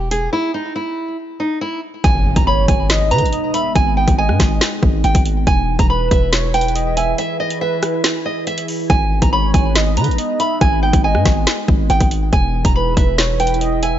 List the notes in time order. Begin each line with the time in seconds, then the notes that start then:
Already playing: E1
0.11 G#4, closed hi-hat
0.33 E4
0.54 D#4
0.76 E4
1.40 D#4
1.61 E4
2.04 G#1 G#3 B3 D#4 G#5, kick, closed hi-hat, impact
2.36 G#1 A#5, kick, closed hi-hat
2.47 C#5 B5
2.68 G#1 G#5, kick, closed hi-hat
2.90 D#5, snare
3.11 D#3 B4 A#5, closed hi-hat
3.18 G#1, closed hi-hat
3.26 closed hi-hat
3.33 D#5, closed hi-hat
3.54 E5 B5, closed hi-hat
3.75 G#1 G#5, kick, closed hi-hat
3.97 G5
4.08 G#1, kick, closed hi-hat
4.18 D#5 G#5
4.29 G#2, cross-stick
4.40 G#1, kick, snare, closed hi-hat
4.61 snare, closed hi-hat
4.83 G#1, kick
5.04 G#1 G5, closed hi-hat
5.15 G#1, kick, closed hi-hat
5.26 closed hi-hat
5.47 E1 E3 E4 G#4 B4 G#5, kick, closed hi-hat
5.79 E1 A#5, kick, closed hi-hat
5.90 B4 B5
6.11 E1 E5, kick, closed hi-hat
6.33 C#5, snare
6.54 B4 G5, closed hi-hat
6.61 closed hi-hat
6.68 closed hi-hat
6.75 D#5, closed hi-hat
6.97 E5 G#5, closed hi-hat
7.18 E5, closed hi-hat
7.40 D#5
7.50 closed hi-hat
7.61 B4 E5
7.83 cross-stick, closed hi-hat
8.04 snare, closed hi-hat
8.26 D#5
8.47 E5, closed hi-hat
8.58 closed hi-hat
8.68 open hi-hat
8.90 G#1 G#3 B3 D#4 G#5, kick, closed hi-hat
9.22 G#1 A#5, kick, closed hi-hat
9.33 C#5 B5
9.54 G#1 G#5, kick, closed hi-hat
9.76 D#5, snare
9.97 D#3 B4 A#5, closed hi-hat
10.04 G#1, closed hi-hat
10.11 closed hi-hat
10.18 D#5, closed hi-hat
10.40 E5 B5, closed hi-hat
10.61 G#1 G#5, kick, closed hi-hat
10.83 G5
10.93 G#1, kick, closed hi-hat
11.04 D#5 G#5
11.15 G#2, cross-stick
11.25 G#1, kick, snare, closed hi-hat
11.47 snare, closed hi-hat
11.68 G#1, kick
11.90 G#1 G5, closed hi-hat
12.01 G#1, kick, closed hi-hat
12.11 closed hi-hat
12.33 E1 E3 E4 G#4 B4 G#5, kick, closed hi-hat
12.65 E1 A#5, kick, closed hi-hat
12.76 B4 B5
12.97 E1 E5, kick, closed hi-hat
13.18 C#5, snare
13.40 B4 G5, closed hi-hat
13.47 closed hi-hat
13.54 closed hi-hat
13.61 D#5, closed hi-hat
13.83 E5 G#5, closed hi-hat